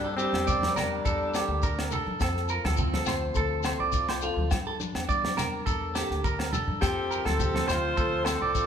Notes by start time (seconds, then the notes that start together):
Already playing: G2 G3 A#3 D4 A#4
0.04 A4
0.17 G3 C4 D4 G4, shekere
0.33 E2, snare, high conga, low agogo
0.47 G3 D5, kick, low conga, shekere
0.63 snare, high conga
0.75 E2 G3 A#3 D4 A#4, snare, low conga, low agogo, shekere
1.05 E2 A4 A#4, kick, shekere
1.34 D3 G4, snare, low agogo, shekere
1.48 D2
1.63 D4 A#4, kick, shekere
1.79 snare, low agogo
1.91 A4 A#4, low conga, shekere
2.06 G2, high conga
2.19 F2 A4, kick, snare, low agogo, shekere
2.37 snare
2.48 F4 A#4, shekere
2.64 D2 A4, snare, high conga, low agogo
2.76 F3 C4, kick, low conga, shekere
2.93 A4, snare, high conga
3.06 D2 C4 C5, snare, low conga, low agogo, shekere
3.34 D2 A4, kick, shekere
3.63 C3 C5, snare, low agogo, shekere
3.80 C2 D5
3.92 F4, kick, shekere
4.09 C5, snare, low agogo
4.22 F4 A4, shekere
4.36 D2, high conga
4.51 G2, muted clean electric guitar stroke, muted steel-string acoustic guitar stroke, kick, snare, low agogo, shekere
4.67 A4
4.80 D4, muted clean electric guitar stroke, high conga, shekere
4.95 E2, snare, high conga, low agogo
5.08 G3 D5, kick, shekere
5.24 snare, high conga
5.37 E2 A#3 A#4, snare, low conga, low agogo, shekere
5.66 E2 A4 A#4, kick, shekere
5.95 D3 G4, snare, low agogo, shekere
6.10 D2, snare
6.24 D4 A#4, kick, shekere
6.39 snare, low agogo
6.53 A4 A#4, high conga, low conga, shekere
6.67 G2, high conga
6.81 F2 C4 F4 G4 A4, kick, snare, low agogo, shekere
7.11 F4 A#4, shekere
7.25 D2 C4 A4, snare, high conga, low agogo
7.39 F3 G4, kick, low conga, shekere
7.54 A4, snare, high conga
7.67 D2 C4 F4 C5, snare, low conga, low agogo, shekere
7.97 D2 A4, kick, shekere
8.25 C3 C4 A4 C5, snare, low agogo, shekere
8.41 C2 D5
8.55 F4, kick, shekere